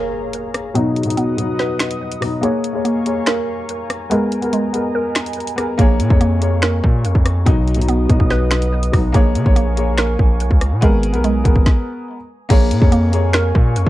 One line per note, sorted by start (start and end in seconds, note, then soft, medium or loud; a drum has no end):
0.00 0.75 A#3 medium
0.00 0.77 A#3 loud
0.00 0.74 G#4 medium
0.00 0.77 G#4 loud
0.00 0.75 A#4 loud
0.00 0.74 C#5 medium
0.00 0.77 C#5 loud
0.00 0.74 F5 medium
0.00 0.74 A#5 medium
0.00 impact medium
0.33 closed hi-hat medium
0.54 cross-stick loud
0.54 closed hi-hat medium
0.74 1.01 B2 loud
0.74 1.02 F#3 loud
0.74 1.16 B3 loud
0.74 1.03 D#4 loud
0.74 2.41 B4 medium
0.74 2.41 D#5 medium
0.74 2.42 F#5 medium
0.74 2.41 D#6 medium
0.74 closed hi-hat medium
0.96 closed hi-hat soft
1.03 1.32 B2 medium
1.03 1.33 F#3 medium
1.03 closed hi-hat medium
1.07 1.34 D#4 loud
1.07 closed hi-hat medium
1.17 2.43 B3 medium
1.17 closed hi-hat medium
1.37 2.08 B2 medium
1.37 2.09 F#3 medium
1.37 2.10 D#4 medium
1.37 closed hi-hat medium
1.59 2.43 B4 loud
1.59 snare medium
1.79 finger snap medium
1.79 snare loud
1.79 closed hi-hat medium
1.91 closed hi-hat medium
2.12 closed hi-hat loud
2.21 2.39 B2 medium
2.21 2.40 F#3 medium
2.21 2.40 D#4 medium
2.21 cross-stick loud
2.21 open hi-hat medium
2.41 2.69 A#3 loud
2.41 2.83 A#3 loud
2.41 2.69 G#4 loud
2.41 2.70 C#5 loud
2.41 4.09 F5 medium
2.41 7.43 G#5 medium
2.41 7.43 A#5 medium
2.41 4.09 C#6 medium
2.41 closed hi-hat medium
2.64 closed hi-hat medium
2.73 3.00 A#3 medium
2.73 3.01 G#4 medium
2.73 3.01 C#5 loud
2.85 4.11 A#3 medium
2.85 closed hi-hat medium
3.05 3.76 A#3 medium
3.05 3.77 G#4 medium
3.05 3.77 C#5 medium
3.05 closed hi-hat medium
3.26 4.11 A#4 loud
3.26 finger snap medium
3.26 snare loud
3.69 closed hi-hat medium
3.90 cross-stick loud
3.90 closed hi-hat medium
4.10 4.52 G#3 loud
4.10 4.37 B3 loud
4.10 4.38 G#4 loud
4.10 4.38 A#4 loud
4.10 5.77 D#5 medium
4.10 closed hi-hat medium
4.32 closed hi-hat medium
4.42 4.68 B3 medium
4.42 4.69 G#4 medium
4.42 4.70 A#4 loud
4.42 closed hi-hat soft
4.53 5.79 G#3 medium
4.53 closed hi-hat medium
4.73 5.44 B3 medium
4.73 5.45 G#4 medium
4.73 5.45 A#4 medium
4.73 closed hi-hat medium
4.95 5.79 A#4 loud
5.15 finger snap medium
5.15 snare loud
5.15 closed hi-hat medium
5.26 closed hi-hat medium
5.33 closed hi-hat medium
5.40 closed hi-hat medium
5.47 closed hi-hat medium
5.56 5.75 B3 medium
5.56 5.75 G#4 medium
5.56 5.76 A#4 medium
5.56 cross-stick loud
5.56 closed hi-hat medium
5.78 6.01 A#1 loud
5.78 6.05 A#3 loud
5.78 6.19 A#3 medium
5.78 6.05 G#4 loud
5.78 6.06 C#5 loud
5.78 7.45 F5 medium
5.78 7.45 C#6 medium
5.78 kick loud
5.78 closed hi-hat medium
6.00 6.10 A#2 loud
6.00 closed hi-hat medium
6.09 6.81 F2 loud
6.09 6.36 A#3 medium
6.09 6.37 G#4 medium
6.09 6.37 C#5 loud
6.09 kick loud
6.21 7.47 A#3 medium
6.21 closed hi-hat medium
6.40 7.12 A#3 medium
6.40 7.12 G#4 medium
6.40 7.13 C#5 medium
6.40 closed hi-hat medium
6.62 7.46 A#4 loud
6.62 finger snap loud
6.62 snare loud
6.84 7.06 A#2 loud
6.84 kick loud
7.05 7.15 F2 loud
7.05 closed hi-hat medium
7.15 7.45 F2 loud
7.15 kick medium
7.26 cross-stick loud
7.26 closed hi-hat medium
7.46 8.07 B1 loud
7.46 7.73 B2 loud
7.46 7.73 F#3 loud
7.46 7.87 B3 loud
7.46 7.74 D#4 loud
7.46 9.13 B4 medium
7.46 9.13 D#5 medium
7.46 9.13 F#5 medium
7.46 9.13 D#6 medium
7.46 kick loud
7.46 closed hi-hat medium
7.68 closed hi-hat soft
7.74 8.04 B2 medium
7.74 8.04 F#3 medium
7.74 closed hi-hat medium
7.79 8.05 D#4 loud
7.79 closed hi-hat medium
7.88 9.14 B3 medium
7.88 closed hi-hat medium
8.08 8.19 B1 loud
8.08 8.80 B2 medium
8.08 8.80 F#3 medium
8.08 8.81 D#4 medium
8.08 kick loud
8.08 closed hi-hat medium
8.20 8.90 B1 loud
8.20 kick medium
8.30 9.14 B4 loud
8.30 snare medium
8.51 finger snap loud
8.51 snare loud
8.51 closed hi-hat medium
8.62 closed hi-hat medium
8.83 closed hi-hat medium
8.92 9.14 B1 loud
8.92 9.10 B2 medium
8.92 9.11 F#3 medium
8.92 9.12 D#4 medium
8.92 kick loud
8.92 cross-stick loud
8.92 open hi-hat medium
9.12 9.37 A#1 loud
9.12 9.40 A#3 loud
9.12 9.55 A#3 medium
9.12 9.41 G#4 loud
9.12 10.81 A#4 medium
9.12 9.41 C#5 loud
9.12 10.81 F5 medium
9.12 10.81 G#5 medium
9.12 10.81 C#6 medium
9.12 kick loud
9.12 closed hi-hat medium
9.35 9.45 C#3 loud
9.35 closed hi-hat medium
9.44 10.16 A#1 loud
9.44 9.71 A#3 medium
9.44 9.72 G#4 medium
9.44 9.73 C#5 loud
9.44 kick loud
9.56 10.82 A#3 medium
9.56 closed hi-hat medium
9.76 10.47 A#3 medium
9.76 10.48 G#4 medium
9.76 10.49 C#5 medium
9.76 closed hi-hat medium
9.98 10.82 A#4 loud
9.98 finger snap loud
9.98 snare loud
10.19 10.42 A#1 loud
10.19 kick loud
10.40 10.50 B1 loud
10.40 closed hi-hat medium
10.51 10.73 C#2 loud
10.51 kick medium
10.61 cross-stick loud
10.61 closed hi-hat medium
10.72 10.82 A#2 loud
10.81 11.15 G#1 loud
10.81 11.23 G#3 medium
10.81 11.08 B3 loud
10.81 11.09 G#4 loud
10.81 11.09 A#4 loud
10.81 11.65 B4 medium
10.81 11.65 G#5 medium
10.81 11.65 A#5 medium
10.81 11.65 D#6 medium
10.81 kick loud
10.81 closed hi-hat medium
11.03 closed hi-hat medium
11.13 11.44 B1 medium
11.13 11.40 B3 medium
11.13 11.40 G#4 medium
11.13 11.41 A#4 loud
11.13 closed hi-hat soft
11.24 12.50 G#3 medium
11.24 closed hi-hat medium
11.44 11.55 G#1 loud
11.44 12.15 B3 medium
11.44 12.16 G#4 medium
11.44 12.16 A#4 medium
11.44 kick loud
11.44 closed hi-hat medium
11.56 11.66 G#1 loud
11.56 kick medium
11.66 kick loud
11.66 snare medium
12.49 12.73 A#1 loud
12.49 12.76 A#3 loud
12.49 12.91 A#3 medium
12.49 12.77 G#4 loud
12.49 13.89 A#4 medium
12.49 12.77 C#5 loud
12.49 13.89 F5 medium
12.49 13.89 G#5 medium
12.49 13.89 C#6 medium
12.49 kick loud
12.49 closed hi-hat medium
12.49 crash loud
12.71 12.81 A#2 loud
12.71 closed hi-hat medium
12.80 13.52 F2 loud
12.80 13.07 A#3 medium
12.80 13.08 G#4 medium
12.80 13.08 C#5 loud
12.80 kick loud
12.92 13.89 A#3 medium
12.92 closed hi-hat medium
13.12 13.83 A#3 medium
13.12 13.84 G#4 medium
13.12 13.84 C#5 medium
13.12 closed hi-hat medium
13.33 13.89 A#4 loud
13.33 finger snap loud
13.33 snare loud
13.55 13.78 A#2 loud
13.55 kick loud
13.76 13.86 F2 loud
13.76 closed hi-hat medium